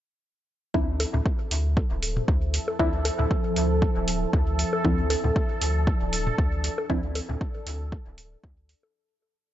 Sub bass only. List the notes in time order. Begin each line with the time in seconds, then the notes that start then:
0.74 D2
1.14 D2
1.51 D2
1.91 D1
2.28 D2
2.79 D2
3.19 D2
3.56 D2
3.96 D1
4.33 D2
4.85 D2
5.24 D2
5.62 D2
6.01 D1
6.38 D2
6.90 D2
7.29 D2
7.67 D2
8.06 D1
8.44 D2